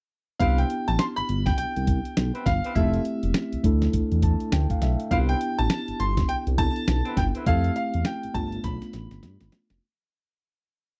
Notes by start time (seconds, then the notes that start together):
0.40 C2 B3 C4 D4 E4 G4 B4 F5, kick, closed hi-hat
0.58 G5, closed hi-hat
0.70 closed hi-hat
0.88 A1 A5, closed hi-hat
0.99 C6, snare, closed hi-hat
1.16 G1 B5, closed hi-hat
1.29 G1, closed hi-hat
1.46 G5, kick, snare, closed hi-hat
1.58 C2 G5, closed hi-hat
1.76 C2, closed hi-hat
1.87 kick, closed hi-hat
2.05 closed hi-hat
2.17 B1, snare, closed hi-hat
2.34 B3 C4 E4 B4, closed hi-hat
2.46 G1 F5, kick, snare, closed hi-hat
2.64 B3 C4 E4 B4, closed hi-hat
2.75 F1 A3 C4 E4 F4 G4 A4 E5, kick, closed hi-hat
2.94 closed hi-hat
3.05 closed hi-hat
3.23 E1, closed hi-hat
3.34 snare, closed hi-hat
3.53 D2, closed hi-hat
3.63 D2 A3 D4 E4 A4, kick, closed hi-hat
3.82 snare, closed hi-hat
3.93 E2, kick, closed hi-hat
4.12 E2, closed hi-hat
4.22 A5, kick, closed hi-hat
4.40 closed hi-hat
4.52 D2 G5, snare, closed hi-hat
4.70 F5, kick, closed hi-hat
4.82 B1 E5, snare, closed hi-hat
5.00 closed hi-hat
5.11 C2 B3 C4 D4 E4 F4 B4 F5, kick, closed hi-hat
5.19 G4
5.29 G5, closed hi-hat
5.41 closed hi-hat
5.58 A1 A5, closed hi-hat
5.70 snare, closed hi-hat
5.88 G1, closed hi-hat
6.00 G1 C6, closed hi-hat
6.17 kick, snare, closed hi-hat
6.29 C2 G5, closed hi-hat
6.47 C2, closed hi-hat
6.58 B3 D4 E4 A4 A5, kick, closed hi-hat
6.76 closed hi-hat
6.88 B1, snare, closed hi-hat
7.05 B3 C4 E4 B4, closed hi-hat
7.17 G1 G5, kick, snare, closed hi-hat
7.35 B3 C4 E4 B4, closed hi-hat
7.46 F2 A3 C4 E4 F4 G4 A4 F5, kick, closed hi-hat
7.64 closed hi-hat
7.76 F5, closed hi-hat
7.94 E2, closed hi-hat
8.05 G5, snare, closed hi-hat
8.23 G1, closed hi-hat
8.34 G1 A3 B3 D4 F4 A5, kick, closed hi-hat
8.52 closed hi-hat
8.64 B1 B5, kick, snare, closed hi-hat
8.82 snare, closed hi-hat
8.93 A1, snare, closed hi-hat
9.11 G1, snare, closed hi-hat
9.23 G2, snare, closed hi-hat
9.40 G1, snare, closed hi-hat
9.52 snare, closed hi-hat
9.70 F1, snare, closed hi-hat